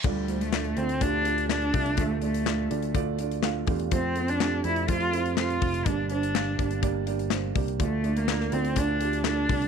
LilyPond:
<<
  \new Staff \with { instrumentName = "Cello" } { \time 4/4 \key d \minor \tempo 4 = 124 g8. a8. c'8 d'4 d'4 | a8 a4. r2 | c'8. d'8. e'8 f'4 f'4 | d'8 d'4. r2 |
a8. bes8. c'8 d'4 d'4 | }
  \new Staff \with { instrumentName = "Felt piano" } { \time 4/4 \key d \minor <a d' f' d''>8 <a d' f' c''>8 <a d' f' d''>8 <a d' f' c''>8 <a d' f' g'>8 <a d' f' d''>8 <a d' f' d''>8 <a d' f' e''>8 | <a d' f' e''>8 <a d' f' d''>8 <a d' f' d''>8 <a d' f' d''>8 <a d' f' d''>8 <a d' f' d''>8 <a d' f' f''>8 <a d' f' g'>8 | <a c' f' c''>8 <a c' f' c''>8 <a c' f' g'>8 <a c' f' d''>8 <a c' f' c''>8 <a c' f' c''>8 <a c' f' c''>8 <a c' f' c''>8 | <bes d' g' d''>8 <bes d' g' c''>8 <bes d' g' f''>8 <bes d' g' d''>8 <bes d' g' d''>8 <bes d' g' d''>8 <bes d' g' c''>8 <bes d' g' d''>8 |
<a d' f' d''>8 <a d' f' d''>8 <a d' f' d''>8 <a d' f' d''>8 <a d' f' d''>8 <a d' f' g'>8 <a d' f' a'>8 <a d' f' d''>8 | }
  \new Staff \with { instrumentName = "Felt piano" } { \clef bass \time 4/4 \key d \minor d4. r2 r8 | d4. r2 r8 | r1 | g,4. r2 r8 |
d4. r2 r8 | }
  \new Staff \with { instrumentName = "Picked electric bass" } { \clef bass \time 4/4 \key d \minor d,4. d,8 d,4. c,8 | d,4. d,2 e,8 | f,4. f,8 f,4. f,,8 | g,,4. g,,2 c,8 |
d,4. d,8 d,4. c,8 | }
  \new DrumStaff \with { instrumentName = "Drums" } \drummode { \time 4/4 <cymc bd>8 hh16 hh16 <hc sn>16 hh16 hh16 hh16 <hh bd>8 hh16 hh16 <hc sn>16 hh16 <hho bd>16 hh16 | <hh bd>8 hh16 hh16 <hc sn>8 hh16 hh16 <hh bd>8 hh16 hh16 <hc sn>8 <hho bd>16 hh16 | <hh bd>8 hh16 hh16 <hc sn>8 hh16 hh16 <hh bd>16 hh16 hh16 hh16 <hc sn>16 hh16 <hho bd>16 hh16 | <hh bd>8 hh16 hh16 <hc sn>8 <hh bd>16 hh16 <hh bd>8 hh16 hh16 <hc sn>8 <hho bd>16 hh16 |
<hh bd>8 hh16 hh16 <hc sn>16 sn16 hh16 hh16 <hh bd>8 hh16 hh16 <hc sn>8 <hho bd>16 hh16 | }
>>